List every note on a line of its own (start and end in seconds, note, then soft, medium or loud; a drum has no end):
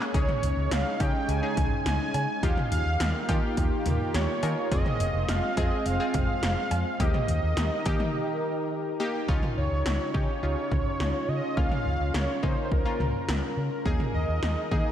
0.00 0.10 G#3 medium
0.00 0.10 A#3 medium
0.00 0.12 A#3 medium
0.00 0.10 C#4 medium
0.00 2.39 C#4 medium
0.00 0.10 G#4 loud
0.00 clap loud
0.14 0.25 C#2 loud
0.14 2.41 C#3 medium
0.14 2.41 G#3 medium
0.14 0.88 C#4 medium
0.14 0.88 D#4 medium
0.14 2.41 D#4 medium
0.14 0.88 G#4 medium
0.14 0.73 C#5 loud
0.14 kick loud
0.14 closed hi-hat medium
0.28 mid tom medium
0.43 0.54 C#2 loud
0.43 closed hi-hat medium
0.57 0.68 C#2 loud
0.71 0.82 C#2 loud
0.71 1.02 F5 loud
0.71 snare loud
0.71 closed hi-hat medium
1.00 1.11 C#3 medium
1.00 1.37 C#4 medium
1.00 1.37 D#4 medium
1.00 1.37 G4 medium
1.00 1.30 G5 loud
1.00 kick loud
1.00 closed hi-hat medium
1.00 cowbell medium
1.28 1.39 C#2 loud
1.28 1.85 G#5 loud
1.28 closed hi-hat medium
1.43 2.29 C#4 medium
1.43 2.29 D#4 medium
1.43 2.29 G#4 medium
1.57 1.68 C#2 medium
1.57 kick medium
1.57 closed hi-hat medium
1.57 mid tom loud
1.86 1.97 C#2 loud
1.86 2.45 G#5 loud
1.86 snare loud
1.86 closed hi-hat medium
2.14 2.25 C#3 loud
2.14 closed hi-hat medium
2.14 cowbell medium
2.43 2.54 D#2 loud
2.43 4.69 D#3 medium
2.43 4.69 A#3 medium
2.43 3.17 D#4 medium
2.43 6.96 F4 medium
2.43 3.17 F4 medium
2.43 3.17 G4 medium
2.43 4.69 G4 medium
2.43 2.71 F5 loud
2.43 kick loud
2.43 closed hi-hat medium
2.57 mid tom medium
2.72 2.82 D#2 loud
2.72 3.25 F5 medium
2.72 closed hi-hat medium
2.86 2.97 D#2 loud
3.00 3.11 D#2 loud
3.00 snare loud
3.00 closed hi-hat medium
3.29 3.40 D#3 loud
3.29 4.27 D#4 medium
3.29 4.27 F4 medium
3.29 4.27 G4 medium
3.29 kick medium
3.29 closed hi-hat medium
3.29 cowbell medium
3.57 3.68 D#2 loud
3.57 kick medium
3.57 closed hi-hat medium
3.86 3.97 D#2 loud
3.86 closed hi-hat medium
3.86 mid tom medium
4.14 4.25 D#2 loud
4.14 4.68 C#5 loud
4.14 snare loud
4.14 closed hi-hat medium
4.43 4.54 D#3 loud
4.43 4.68 D#4 medium
4.43 4.68 F4 medium
4.43 4.68 A#4 medium
4.43 closed hi-hat medium
4.43 cowbell medium
4.72 4.82 F1 loud
4.72 6.98 G#3 medium
4.72 5.45 C4 medium
4.72 6.98 C4 medium
4.72 5.45 F4 medium
4.72 5.45 G#4 medium
4.72 5.31 D#5 loud
4.72 kick loud
4.72 closed hi-hat medium
4.86 mid tom medium
5.00 5.11 F1 loud
5.00 closed hi-hat medium
5.14 5.25 F1 loud
5.28 5.39 F1 loud
5.28 5.59 F5 loud
5.28 snare loud
5.28 closed hi-hat medium
5.57 5.68 F2 loud
5.57 5.94 C4 medium
5.57 5.94 F4 medium
5.57 5.94 G#4 medium
5.57 5.86 D#5 loud
5.57 kick medium
5.57 closed hi-hat medium
5.57 cowbell medium
5.86 5.97 F1 loud
5.86 7.02 F5 loud
5.86 closed hi-hat medium
6.00 6.86 C4 medium
6.00 6.86 F4 medium
6.00 6.86 G#4 medium
6.14 6.25 F1 loud
6.14 kick medium
6.14 closed hi-hat medium
6.14 mid tom medium
6.43 6.54 F1 loud
6.43 snare loud
6.43 closed hi-hat medium
6.71 6.82 F2 medium
6.71 closed hi-hat medium
6.71 cowbell medium
7.00 7.11 D#2 loud
7.00 9.26 D#3 medium
7.00 7.74 A#3 medium
7.00 7.74 D#4 medium
7.00 9.26 D#4 medium
7.00 7.74 G4 medium
7.00 9.26 G4 medium
7.00 9.26 A#4 medium
7.00 8.72 D#5 loud
7.00 kick loud
7.00 closed hi-hat medium
7.14 mid tom medium
7.28 7.40 D#2 loud
7.28 closed hi-hat medium
7.43 7.54 D#2 medium
7.57 7.68 D#2 loud
7.57 snare loud
7.57 closed hi-hat medium
7.86 7.97 D#3 loud
7.86 8.84 A#3 medium
7.86 8.84 D#4 medium
7.86 8.84 G4 loud
7.86 kick loud
7.86 closed hi-hat medium
7.86 cowbell medium
8.00 mid tom medium
9.00 9.25 A#3 medium
9.00 9.25 D#4 medium
9.00 9.25 G4 loud
9.28 9.40 C#2 loud
9.28 13.82 C#3 medium
9.28 10.02 C#4 medium
9.28 13.82 C#4 medium
9.28 10.02 D#4 medium
9.28 11.55 D#4 medium
9.28 10.02 F4 loud
9.28 13.82 F4 medium
9.28 kick loud
9.43 mid tom medium
9.57 9.68 C#2 loud
9.57 10.11 C#5 medium
9.72 9.82 C#2 medium
9.86 9.97 C#2 medium
9.86 snare loud
10.14 10.25 C#3 loud
10.14 10.39 C#4 medium
10.14 10.39 D#4 medium
10.14 10.39 G4 medium
10.14 11.30 C#5 loud
10.14 kick medium
10.43 10.54 C#2 loud
10.43 11.41 C#4 medium
10.43 11.41 D#4 medium
10.43 11.41 F4 medium
10.71 10.82 C#2 medium
10.71 kick medium
10.71 mid tom medium
11.00 11.11 C#2 loud
11.00 snare loud
11.29 11.40 C#3 loud
11.29 11.59 D#5 loud
11.57 11.68 C#2 loud
11.57 12.31 A#3 medium
11.57 12.31 C#4 medium
11.57 12.31 F4 medium
11.57 14.92 A#4 medium
11.57 12.17 F5 loud
11.57 kick loud
11.71 mid tom medium
11.86 11.97 C#2 loud
12.00 12.11 C#2 loud
12.14 12.25 C#2 loud
12.14 12.45 C#5 loud
12.14 snare loud
12.43 12.54 C#3 loud
12.43 12.80 A#3 medium
12.43 12.80 C#4 medium
12.43 12.80 D#4 medium
12.43 12.64 C5 medium
12.43 kick medium
12.64 12.73 C5 medium
12.72 12.83 C#2 loud
12.72 13.57 A#4 medium
12.72 kick medium
12.85 13.72 A#3 medium
12.85 13.72 C#4 medium
12.85 13.72 F4 medium
13.00 13.11 C#2 loud
13.00 mid tom medium
13.28 13.39 C#2 loud
13.28 snare loud
13.57 13.68 C#3 medium
13.85 13.97 D#2 loud
13.85 14.92 D#3 medium
13.85 14.60 A#3 medium
13.85 14.60 D#4 medium
13.85 14.92 D#4 medium
13.85 14.60 G#4 loud
13.85 14.92 G#4 medium
13.85 kick loud
14.00 mid tom medium
14.14 14.25 D#2 loud
14.14 14.67 D#5 medium
14.28 14.39 D#2 loud
14.43 14.54 D#2 loud
14.43 snare loud
14.71 14.82 D#3 medium
14.71 14.92 A#3 medium
14.71 14.92 D#4 medium
14.71 14.92 G#4 medium
14.71 14.92 D#5 loud
14.71 kick medium